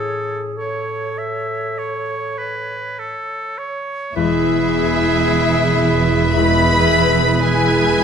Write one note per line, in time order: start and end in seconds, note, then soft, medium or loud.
0.00 3.09 A2 soft
0.00 3.14 C#4 soft
0.00 3.18 E4 soft
0.00 0.59 G#4 medium
0.00 0.45 A4 soft
0.00 0.56 C#5 soft
0.00 3.23 C#5 soft
0.57 2.98 A4 soft
0.57 3.79 C#5 soft
0.57 1.19 C#5 soft
1.18 1.80 E5 soft
1.78 2.40 C#5 soft
2.38 3.00 B4 soft
2.99 3.60 A4 soft
3.58 4.15 C#5 soft
4.15 8.04 E1 medium
4.15 8.04 E2 medium
4.15 6.32 G#3 medium
4.15 4.58 G#3 soft
4.15 6.32 E4 medium
4.15 4.58 E4 medium
4.15 8.04 G#4 medium
4.15 6.32 G#4 medium
4.15 8.04 B4 soft
4.15 6.32 E5 medium
4.43 6.62 B3 soft
4.69 6.07 G#4 soft
4.95 5.49 E5 soft
5.22 7.40 G#5 soft
5.50 7.14 E5 soft
5.79 7.92 B4 soft
6.08 6.88 G#4 soft
6.36 8.04 B2 soft
6.36 6.78 G#3 medium
6.36 7.39 G#3 medium
6.36 7.39 E4 medium
6.36 6.78 E4 medium
6.36 7.41 B4 medium
6.36 7.42 E5 medium
6.36 7.41 B5 medium
6.63 8.04 B3 soft
6.89 8.04 G#4 soft
7.15 7.66 E5 soft
7.40 8.04 G#3 medium
7.40 8.04 E4 medium
7.40 8.04 G#4 medium
7.40 8.04 B4 medium
7.40 8.04 G#5 soft
7.40 8.04 G#5 medium
7.67 8.04 E5 soft
7.94 8.04 B4 soft